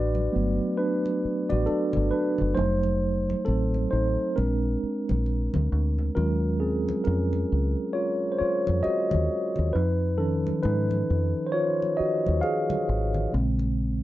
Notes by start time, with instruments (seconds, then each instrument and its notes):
Already playing: fingered electric bass A1, tine electric piano D4 F#4 B4 D5
0.15 high conga
0.32 fingered electric bass G1, tine electric piano F#3 A3 B3
0.77 tine electric piano D4 B4
1.06 muted conga
1.25 muted fingered electric bass stroke
1.50 fingered electric bass A1, tine electric piano F#4 D5, high conga
1.66 tine electric piano D4 A4, muted fingered electric bass stroke, muted conga
1.93 fingered electric bass G1, high conga, low conga
2.11 tine electric piano D4 B4
2.38 fingered electric bass F#1, low conga
2.55 fingered electric bass F1, tine electric piano F#3 A3 D#4 C5, muted conga, low conga
2.83 muted conga
3.30 high conga
3.45 fingered electric bass A1, tine electric piano C4 A4, muted conga
3.74 high conga
3.91 fingered electric bass A1, tine electric piano D#4 C5
4.36 fingered electric bass A#1, tine electric piano G#3 C4 D4 A#4, high conga
4.83 muted fingered electric bass stroke
5.09 fingered electric bass A#1, high conga
5.26 muted conga
5.54 fingered electric bass D2, high conga, low conga
5.72 fingered electric bass D2
5.99 low conga
6.15 fingered electric bass D#2, tine electric piano F#3 G#3 C#4 F4 A#4, muted conga
6.60 tine electric piano C4 G#4
6.88 high conga
7.04 fingered electric bass F2, tine electric piano C#4 A#4, muted conga
7.33 high conga
7.52 fingered electric bass C#2
7.93 tine electric piano F4 C#5
8.32 tine electric piano C5
8.38 tine electric piano F4 C#5, muted fingered electric bass stroke
8.67 fingered electric bass F2, high conga
8.83 tine electric piano F#4 D#5, muted fingered electric bass stroke, muted conga
9.11 fingered electric bass D#2, muted conga, high conga, low conga
9.56 fingered electric bass D#2, low conga
9.73 fingered electric bass F2, tine electric piano D#4 B4
10.18 tine electric piano D#3 F3 C#4 A4
10.47 high conga
10.63 fingered electric bass G#2, tine electric piano D#4 B4, muted conga
10.91 high conga
11.10 fingered electric bass F2
11.47 tine electric piano C5
11.52 tine electric piano F4 C#5
11.82 muted conga
11.97 tine electric piano F#4 D#5, muted fingered electric bass stroke
12.26 fingered electric bass D#2, high conga
12.41 tine electric piano G#4 F5, muted conga
12.70 muted conga, high conga, low conga
12.89 fingered electric bass G#1
13.14 low conga
13.32 fingered electric bass A#1, tine electric piano C#3 G#3 C4, muted conga
13.59 muted conga